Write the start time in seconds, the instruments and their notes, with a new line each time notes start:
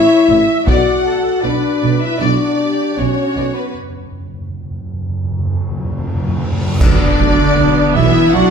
Already playing: french horn section E4, viola section C#5, violin section E5
0.29 double bass section A1, tuba A1, cello section A2, violin section C#5, viola section E5
0.67 double bass section B1, tuba B1, cello section B2, french horn section F#4, viola section D5, violin section D5 F#5, taiko
1.06 viola section A4
1.43 double bass section B1, tuba B1, cello section B2, french horn section D4, viola section B4, violin section D5
1.83 tuba B1, double bass section B1, cello section B2, violin section D5
2.01 french horn section E4, violin section E5
2.20 double bass section B1, tuba B1, cello section B2, french horn section D4, viola section F#4, violin section D5
2.59 viola section G4
2.97 tuba B1, double bass section B1, cello section B2, french horn section C#4, viola section F#4, violin section C#5 D5
3.36 tuba B1, double bass section B1, cello section B2, violin section D5
3.55 french horn section B3, violin section B4
3.74 timpani F#2, reverse cymbal
3.83 timpani F#2
3.89 timpani F#2
3.98 timpani F#2
4.05 timpani F#2
4.12 timpani F#2
4.19 timpani F#2
4.27 timpani F#2
4.33 timpani F#2
4.41 timpani F#2
4.49 timpani F#2
4.56 timpani F#2
4.63 timpani F#2
4.71 timpani F#2
4.79 timpani F#2
4.86 timpani F#2
4.94 timpani F#2
5.01 timpani F#2
5.09 timpani F#2
5.17 timpani F#2
5.24 timpani F#2
5.31 timpani F#2
5.39 timpani F#2
5.47 timpani F#2
5.54 timpani F#2
5.61 timpani F#2
5.69 timpani F#2
5.77 timpani F#2
5.85 timpani F#2
5.92 timpani F#2
5.99 timpani F#2
6.07 timpani F#2
6.14 timpani F#2
6.21 timpani F#2
6.28 timpani F#2
6.36 timpani F#2
6.44 timpani F#2
6.52 timpani F#2
6.60 timpani F#2
6.67 timpani F#2
6.74 timpani F#2
6.80 double bass section B1, tuba B1, cello section D3, viola section B3, french horn section D4, trumpet D4, violin section D5, concert bass drum, taiko, crash, impact
7.19 double bass section B1, tuba B1, viola section A3
7.58 double bass section B1, tuba B1, viola section B3
7.95 double bass section B1, tuba B1, cello section E3, french horn section E4, trumpet E4, violin section E5, taiko
8.33 double bass section B1, tuba B1, cello section F#3, viola section D4, french horn section F#4, trumpet F#4, violin section F#5